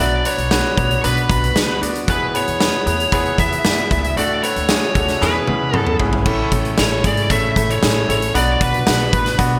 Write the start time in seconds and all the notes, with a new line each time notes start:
0.00 B1 B2 F#3 B3 D4 F#4 B4 D5
0.25 B3 D4 F#4 B4 C#5, closed hi-hat
0.38 B1, closed hi-hat
0.51 B3 D4 F#4 B4, snare
0.77 B1 B3 D4 F#4 B4, kick, closed hi-hat
0.91 closed hi-hat
1.03 B1 B3 D4 F#4 B4, closed hi-hat
1.17 closed hi-hat
1.30 B1 B3 D4 F#4 B4, kick, closed hi-hat
1.44 closed hi-hat
1.56 C#2 B3 D4 F#4 B4, snare
1.81 D2 B3 D4 F#4 D5, closed hi-hat
1.95 closed hi-hat
2.08 E2 B2 B3 E4 G#4 B4, kick, closed hi-hat
2.34 B3 E4 G#4 B4 C#5, closed hi-hat
2.47 E2, closed hi-hat
2.60 B3 E4 G#4 B4, snare
2.86 E2 B3 E4 G#4 B4, closed hi-hat
3.00 closed hi-hat
3.12 E2 B3 E4 G#4 B4 C#5, kick, closed hi-hat
3.26 closed hi-hat
3.38 E2 B3 E4 G#4 B4 E5, kick, closed hi-hat
3.52 closed hi-hat
3.65 F#2 B3 E4 G#4 D5, snare
3.77 closed hi-hat
3.91 C#2 B3 E4 G#4 D5, kick, closed hi-hat
4.04 closed hi-hat
4.16 D2 A2 A3 D4 F#4 A4 D5, closed hi-hat
4.43 A3 D4 F#4 B4 C#5, closed hi-hat
4.56 D2, closed hi-hat
4.69 A3 D4 F#4 G#4, snare
4.95 D2 A3 D4 F#4 A4, kick, closed hi-hat
5.08 snare, closed hi-hat
5.21 E2 B2 B3 C#4 E4 G#4 B4, snare
5.47 E2 B3 C#4 E4 G#4, high tom
5.74 F#2 B3 C#4 E4 G#4 A4, mid tom
5.87 mid tom
5.99 G#1 B3 C#4 E4 G#4, floor tom
6.13 floor tom
6.26 A1 A2 E3 A3 C#4 E4 A4, kick, crash
6.52 A1 A3 C#4 E4 A4, kick, closed hi-hat
6.65 closed hi-hat
6.78 A1 A3 C#4 E4 A4 C#5, snare
7.04 G#1 A3 C#4 E4 G#4 D5, kick, closed hi-hat
7.17 closed hi-hat
7.30 A1 A3 C#4 E4 A4 E5, kick, closed hi-hat
7.56 A1 A3 C#4 E4 A4, kick, closed hi-hat
7.70 C#5, closed hi-hat
7.82 A1 A3 C#4 E4 G#4, snare
8.08 A1 A3 C#4 E4 A4 C#5, closed hi-hat
8.22 closed hi-hat
8.34 B1 B2 F#3 B3 D4 F#4 B4 D5, closed hi-hat
8.60 B1 B3 D4 F#4 B4 D5, kick, closed hi-hat
8.74 closed hi-hat
8.86 B1 B3 D4 F#4 B4, snare
9.00 closed hi-hat
9.13 A1 B3 D4 F#4 B4, kick, closed hi-hat
9.26 snare, closed hi-hat
9.38 B1 B3 D4 F#4 B4, kick, closed hi-hat